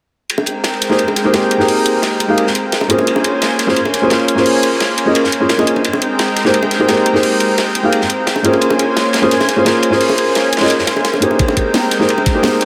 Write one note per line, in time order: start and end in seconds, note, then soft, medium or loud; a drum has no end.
0.29 2.87 G#3 medium
0.29 2.87 C4 medium
0.29 2.87 A#4 medium
0.29 2.87 G5 medium
0.29 closed hi-hat medium
0.29 ride medium
0.38 high bongo medium
0.46 closed hi-hat medium
0.46 ride medium
0.64 snare loud
0.64 closed hi-hat medium
0.64 ride medium
0.73 ride soft
0.81 snare soft
0.81 closed hi-hat medium
0.81 ride medium
0.89 0.99 A#3 medium
0.89 0.99 D#4 medium
0.89 0.99 G4 medium
0.89 1.00 G#4 medium
0.89 1.00 C5 medium
0.89 snare soft
0.98 closed hi-hat medium
0.98 ride medium
1.08 ride soft
1.08 high bongo medium
1.16 snare soft
1.16 closed hi-hat medium
1.16 ride medium
1.24 1.31 A#3 medium
1.24 1.31 D#4 medium
1.24 1.32 G4 medium
1.24 1.32 G#4 medium
1.24 1.32 C5 medium
1.33 1.56 A#3 medium
1.33 1.57 D#4 medium
1.33 1.58 G4 medium
1.33 1.58 G#4 medium
1.33 1.58 C5 medium
1.33 snare loud
1.33 closed hi-hat medium
1.33 ride medium
1.43 ride soft
1.51 closed hi-hat medium
1.51 ride medium
1.58 2.26 A#3 medium
1.58 2.27 D#4 medium
1.58 2.27 G4 medium
1.58 2.27 G#4 medium
1.58 snare soft
1.62 2.28 C5 medium
1.68 closed hi-hat medium
1.68 open hi-hat medium
1.86 closed hi-hat medium
1.86 ride medium
2.02 snare loud
2.02 closed hi-hat medium
2.02 ride medium
2.20 closed hi-hat medium
2.20 ride medium
2.28 2.43 A#3 medium
2.28 2.43 D#4 medium
2.28 2.43 G4 medium
2.28 2.44 G#4 medium
2.28 2.44 F5 medium
2.38 closed hi-hat medium
2.38 ride medium
2.47 snare medium
2.55 closed hi-hat medium
2.55 ride medium
2.72 snare loud
2.72 closed hi-hat medium
2.72 ride medium
2.81 high bongo medium
2.88 3.65 A#3 medium
2.88 5.82 A#3 medium
2.88 3.65 C#4 medium
2.88 5.82 C#4 medium
2.88 3.66 F4 medium
2.88 3.66 G#4 medium
2.88 5.82 C5 medium
2.88 5.82 G#5 medium
2.88 closed hi-hat medium
2.88 ride medium
2.92 3.67 C5 medium
2.98 ride soft
2.98 high bongo medium
3.07 closed hi-hat medium
3.07 ride medium
3.16 high bongo medium
3.24 closed hi-hat medium
3.24 ride medium
3.42 snare medium
3.42 closed hi-hat medium
3.42 ride medium
3.50 ride soft
3.59 snare soft
3.59 closed hi-hat medium
3.59 ride medium
3.67 3.76 A#3 medium
3.67 3.76 C#4 medium
3.67 3.77 F4 medium
3.67 3.77 G#4 medium
3.67 3.77 C5 medium
3.67 snare soft
3.76 closed hi-hat medium
3.76 ride medium
3.85 ride soft
3.85 high bongo medium
3.93 snare soft
3.93 closed hi-hat medium
3.93 ride medium
4.02 4.09 A#3 medium
4.02 4.09 C#4 medium
4.02 4.09 F4 medium
4.02 4.09 G#4 medium
4.02 4.10 C5 medium
4.10 4.34 A#3 medium
4.10 4.35 C#4 medium
4.10 4.35 F4 medium
4.10 4.35 G#4 medium
4.10 4.36 C5 medium
4.10 snare loud
4.10 closed hi-hat medium
4.10 ride medium
4.19 ride soft
4.28 closed hi-hat medium
4.28 ride medium
4.35 5.03 A#3 medium
4.35 5.04 C#4 medium
4.35 5.04 F4 medium
4.35 5.05 G#4 medium
4.35 5.05 C5 medium
4.35 snare soft
4.46 closed hi-hat medium
4.46 open hi-hat medium
4.63 closed hi-hat medium
4.63 ride medium
4.80 snare medium
4.80 closed hi-hat medium
4.80 ride medium
4.98 closed hi-hat medium
4.98 ride medium
5.05 5.20 A#3 medium
5.05 5.21 C#4 medium
5.05 5.21 F4 medium
5.05 5.21 G#4 medium
5.05 5.21 D#5 medium
5.15 closed hi-hat medium
5.15 ride medium
5.24 snare medium
5.32 closed hi-hat medium
5.32 ride medium
5.40 5.50 A#3 medium
5.40 5.50 C#4 medium
5.40 5.50 F4 medium
5.40 5.50 G#4 medium
5.40 5.51 A#4 medium
5.49 snare loud
5.49 closed hi-hat medium
5.49 ride medium
5.58 5.83 A#3 medium
5.58 5.83 C#4 medium
5.58 5.83 F4 medium
5.58 5.84 G#4 medium
5.58 5.84 D#5 medium
5.58 high bongo medium
5.67 closed hi-hat medium
5.67 ride medium
5.76 ride soft
5.76 high bongo medium
5.84 8.42 G#3 medium
5.84 8.42 C4 medium
5.84 8.42 A#4 medium
5.84 8.42 G5 medium
5.84 closed hi-hat medium
5.84 ride medium
5.93 high bongo medium
6.02 closed hi-hat medium
6.02 ride medium
6.19 snare loud
6.19 closed hi-hat medium
6.19 ride medium
6.28 ride soft
6.36 snare soft
6.36 closed hi-hat medium
6.36 ride medium
6.44 6.54 A#3 medium
6.44 6.54 D#4 medium
6.44 6.54 G4 medium
6.44 6.55 G#4 medium
6.44 6.55 C5 medium
6.44 snare soft
6.54 closed hi-hat medium
6.54 ride medium
6.62 ride soft
6.62 high bongo medium
6.71 snare soft
6.71 closed hi-hat medium
6.71 ride medium
6.79 6.86 A#3 medium
6.79 6.86 D#4 medium
6.79 6.87 G4 medium
6.79 6.87 G#4 medium
6.79 6.87 C5 medium
6.88 7.11 A#3 medium
6.88 7.12 D#4 medium
6.88 7.13 G4 medium
6.88 7.13 G#4 medium
6.88 7.13 C5 medium
6.88 snare loud
6.88 closed hi-hat medium
6.88 ride medium
6.97 ride soft
7.06 closed hi-hat medium
7.06 ride medium
7.13 7.81 A#3 medium
7.13 7.81 D#4 medium
7.13 7.82 G4 medium
7.13 7.82 G#4 medium
7.13 7.83 C5 medium
7.13 snare soft
7.23 closed hi-hat medium
7.23 open hi-hat medium
7.40 closed hi-hat medium
7.40 ride medium
7.58 snare loud
7.58 closed hi-hat medium
7.58 ride medium
7.75 closed hi-hat medium
7.75 ride medium
7.83 7.98 A#3 medium
7.83 7.98 D#4 medium
7.83 7.98 G4 medium
7.83 7.99 G#4 medium
7.83 7.99 F5 medium
7.92 closed hi-hat medium
7.92 ride medium
8.01 snare soft
8.09 closed hi-hat medium
8.09 ride medium
8.27 snare loud
8.27 closed hi-hat medium
8.27 ride medium
8.36 high bongo medium
8.43 9.20 A#3 medium
8.43 11.37 A#3 medium
8.43 9.20 C#4 medium
8.43 11.37 C#4 medium
8.43 9.21 F4 medium
8.43 9.21 G#4 medium
8.43 11.37 C5 medium
8.43 11.36 G#5 medium
8.43 closed hi-hat medium
8.43 ride medium
8.47 9.22 C5 medium
8.53 ride soft
8.53 high bongo medium
8.61 closed hi-hat medium
8.61 ride medium
8.70 high bongo medium
8.79 closed hi-hat medium
8.79 ride medium
8.96 snare loud
8.96 closed hi-hat medium
8.96 ride medium
9.05 ride soft
9.13 snare medium
9.13 closed hi-hat medium
9.13 ride medium
9.22 9.31 A#3 medium
9.22 9.31 C#4 medium
9.22 9.32 F4 medium
9.22 9.32 G#4 medium
9.22 9.32 C5 medium
9.22 ride soft
9.31 snare soft
9.31 closed hi-hat medium
9.31 ride medium
9.40 snare soft
9.40 high bongo medium
9.48 snare soft
9.48 closed hi-hat medium
9.48 ride medium
9.56 9.63 A#3 medium
9.56 9.64 C#4 medium
9.56 9.64 F4 medium
9.56 9.64 G#4 medium
9.56 9.64 C5 medium
9.65 9.89 A#3 medium
9.65 9.90 C#4 medium
9.65 9.90 F4 medium
9.65 9.90 G#4 medium
9.65 9.90 C5 medium
9.65 snare loud
9.65 closed hi-hat medium
9.65 ride medium
9.75 ride soft
9.83 closed hi-hat medium
9.83 ride medium
9.90 10.58 A#3 medium
9.90 10.59 C#4 medium
9.90 10.59 F4 medium
9.90 10.60 G#4 medium
9.90 snare soft
9.94 10.60 C5 medium
10.01 closed hi-hat medium
10.01 open hi-hat medium
10.09 high bongo medium
10.18 closed hi-hat medium
10.18 ride medium
10.35 snare loud
10.35 closed hi-hat medium
10.35 ride medium
10.53 closed hi-hat medium
10.53 ride medium
10.57 10.75 A#3 medium
10.57 snare medium
10.57 ride medium
10.61 10.76 C#4 medium
10.61 10.76 F4 medium
10.61 10.76 G#4 medium
10.61 10.76 D#5 medium
10.61 snare medium
10.61 ride medium
10.66 snare medium
10.66 ride medium
10.70 closed hi-hat medium
10.70 ride medium
10.79 snare soft
10.87 snare medium
10.87 closed hi-hat medium
10.87 ride medium
10.96 ride soft
10.96 high bongo soft
11.05 snare loud
11.05 closed hi-hat medium
11.05 ride medium
11.14 high bongo medium
11.20 11.97 A#3 medium
11.20 11.98 D#4 medium
11.20 11.98 G4 medium
11.20 11.99 G#4 medium
11.20 closed hi-hat medium
11.20 ride medium
11.24 11.99 C5 medium
11.31 high bongo medium
11.39 12.65 G#3 medium
11.39 12.65 C4 medium
11.39 12.65 A#4 medium
11.39 12.65 G5 medium
11.39 kick loud
11.39 closed hi-hat medium
11.39 ride medium
11.48 high bongo medium
11.57 kick medium
11.57 closed hi-hat medium
11.57 ride medium
11.74 snare loud
11.74 closed hi-hat medium
11.74 ride medium
11.83 ride soft
11.91 snare medium
11.91 closed hi-hat medium
11.91 ride medium
11.99 12.09 A#3 medium
11.99 12.09 D#4 medium
11.99 12.09 G4 medium
11.99 12.09 G#4 medium
11.99 12.10 C5 medium
11.99 snare soft
12.09 closed hi-hat medium
12.09 ride medium
12.18 ride soft
12.18 high bongo medium
12.26 kick medium
12.26 snare soft
12.26 closed hi-hat medium
12.26 ride medium
12.34 12.41 A#3 medium
12.34 12.41 D#4 medium
12.34 12.42 G4 medium
12.34 12.42 G#4 medium
12.34 12.42 C5 medium
12.42 12.65 A#3 medium
12.42 12.65 D#4 medium
12.42 12.65 G4 medium
12.42 12.65 G#4 medium
12.42 12.65 C5 medium
12.42 snare loud
12.42 closed hi-hat medium
12.42 ride medium
12.53 ride soft
12.61 closed hi-hat medium